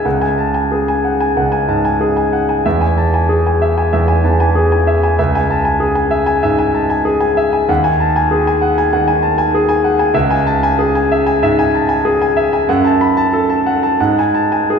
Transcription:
grand piano
0.05 C#2 F#5
0.21 G#5
0.38 A5
0.54 G#5
0.72 G#4
0.88 G#5
1.04 F#5
1.20 G#5
1.37 C#2 F#5
1.52 G#5
1.69 G#2 A5
1.85 G#5
2.01 G#4
2.17 G#5
2.33 F#5
2.49 G#5
2.66 E2 E5
2.81 G#5
2.97 A5
3.14 G#5
3.29 G#4
3.47 G#5
3.62 E5
3.78 G#5
3.93 E2 E5
4.08 G#5
4.24 E3 A5
4.40 G#5
4.55 G#4
4.72 G#5
4.87 E5
5.03 G#5
5.19 C#2 E5
5.35 G#5
5.50 A5
5.65 G#5
5.80 G#4
5.95 G#5
6.11 E5
6.26 G#5
6.43 G#2 E5
6.59 G#5
6.74 A5
6.90 G#5
7.05 G#4
7.21 G#5
7.37 E5
7.53 G#5
7.69 D#2 F#5
7.84 G#5
8.00 A5
8.16 G#5
8.31 G#4
8.47 G#5
8.62 F#5
8.78 G#5
8.93 D#3 F#5
9.08 G#5
9.23 A5
9.38 G#5
9.55 G#4
9.69 G#5
9.84 F#5
9.99 G#5
10.14 C#2 E5
10.31 G#5
10.47 A5
10.63 G#5
10.79 G#4
10.95 G#5
11.12 E5
11.27 G#5
11.43 G#2 E5
11.59 G#5
11.74 A5
11.89 G#5
12.05 G#4
12.22 G#5
12.37 E5
12.53 G#5
12.69 F#2 F#5
12.85 A5
13.01 B5
13.17 A5
13.33 A4
13.50 A5
13.66 F#5
13.83 A5
14.00 G#2 F#5
14.19 G#5
14.35 A5
14.52 G#5
14.70 G#4

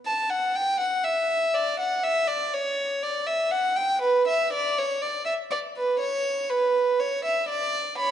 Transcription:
violin
0.06 A5
0.30 F#5
0.56 G5
0.80 F#5
1.04 E5
1.54 D5
1.80 F#5
2.04 E5
2.28 D5
2.54 C#5
3.03 D5
3.26 E5
3.51 F#5
3.76 G5
4.01 B4
4.28 E5
4.53 D5
4.78 C#5
5.02 D5
5.25 E5
5.51 D5
5.77 B4
6.00 C#5
6.50 B4
7.00 C#5
7.25 E5
7.48 D5
7.98 C#5 B5

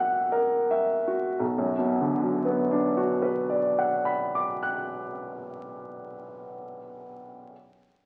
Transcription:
grand piano
Already playing: B2 A#3 F#4 A#4 E5 F#5 E6
0.32 A#4
0.71 E5
1.07 F#4
1.39 B1
1.58 F#2
1.78 B2
2.01 D3
2.23 F#3
2.45 B3
2.71 D4
2.97 F#4
3.22 B4
3.50 D5
3.79 F#5
4.05 B5
4.35 D6
4.63 F#6

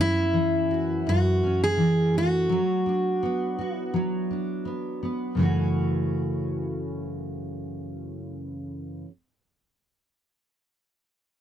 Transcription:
steel-string acoustic guitar
Already playing: F#2 C#4
0.01 E4
0.33 E3
0.71 F#4
1.07 F#2 F#4
1.43 C#4
1.64 G#4
1.77 E3
2.14 A3 F#4
2.49 F#3
2.86 D4
3.23 B3
3.58 F#4
3.76 E4
3.94 F#3
4.31 D4
4.65 B3
5.03 B3
5.35 F#2 C#3 E3
5.40 A3 C#4 F#4

